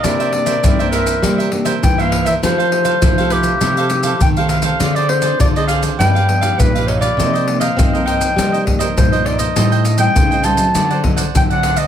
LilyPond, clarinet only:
\new Staff \with { instrumentName = "Clarinet" } { \time 4/4 \key c \dorian \tempo 4 = 101 d''4. bes'4 r8 g''16 f''8 e''16 | c''4. g'4. g''16 f''16 f''8~ | f''16 d''16 c''8 d''16 ees''16 f''8 g''4 b'8 cis''16 d''16~ | d''8. f''8. g''4 r8 c''8 d''16 ees''16~ |
ees''8. g''8. a''4 r8 g''16 fis''8 ees''16 | }